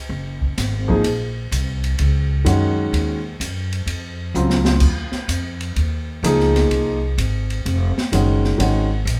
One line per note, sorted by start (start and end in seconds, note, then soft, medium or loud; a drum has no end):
0.09 0.55 F#1 medium
0.42 kick medium
0.57 1.03 G#1 medium
0.57 snare soft
0.57 hi-hat pedal soft
0.57 ride medium
0.88 1.02 F3 medium
0.88 1.03 A#3 medium
0.88 1.03 D#4 soft
0.88 1.04 G#4 medium
0.88 kick soft
1.04 1.50 A#1 medium
1.04 ride medium
1.51 1.97 C2 medium
1.51 hi-hat pedal medium
1.51 ride medium
1.84 ride soft
1.99 2.45 C#2 medium
1.99 ride medium
2.45 2.91 F#2 medium
2.45 3.17 D#3 medium
2.45 3.18 G#3 medium
2.45 3.18 C#4 medium
2.45 3.18 F#4 medium
2.45 hi-hat pedal medium
2.45 ride medium
2.93 3.39 D#2 medium
2.93 ride medium
3.40 3.85 F#2 medium
3.40 hi-hat pedal medium
3.40 ride medium
3.73 ride soft
3.86 4.32 F2 medium
3.86 ride medium
4.34 4.80 C#2 medium
4.34 4.81 C#3 medium
4.34 4.82 F#3 medium
4.34 4.82 C4 soft
4.34 4.82 F4 medium
4.34 hi-hat pedal soft
4.50 snare soft
4.65 snare medium
4.80 5.10 D#2 medium
4.80 kick medium
4.80 crash medium
5.12 muted upright bass stroke soft
5.12 snare soft
5.28 5.74 F2 medium
5.28 hi-hat pedal soft
5.28 ride medium
5.61 ride soft
5.76 6.22 D#2 medium
5.76 ride soft
6.23 6.69 C#2 medium
6.23 6.96 F3 medium
6.23 6.96 A#3 medium
6.23 6.96 D#4 medium
6.23 6.97 G#4 medium
6.23 hi-hat pedal medium
6.23 ride medium
6.40 snare soft
6.55 snare soft
6.55 ride soft
6.70 7.16 C2 medium
6.70 ride soft
7.18 7.63 G#1 medium
7.18 hi-hat pedal soft
7.18 ride medium
7.50 ride soft
7.65 7.94 F1 medium
7.65 ride soft
7.97 muted upright bass stroke soft
7.97 snare soft
8.12 8.58 F#1 medium
8.12 8.57 D#3 medium
8.12 8.58 G#3 medium
8.12 8.58 C#4 soft
8.12 8.59 F#4 medium
8.12 hi-hat pedal medium
8.12 ride medium
8.44 snare soft
8.58 9.05 G#1 medium
8.58 8.87 D#3 medium
8.58 8.87 G#3 soft
8.58 8.88 C#4 soft
8.58 8.88 F#4 medium
8.58 ride medium
9.05 9.20 A#1 medium
9.05 hi-hat pedal soft
9.05 ride medium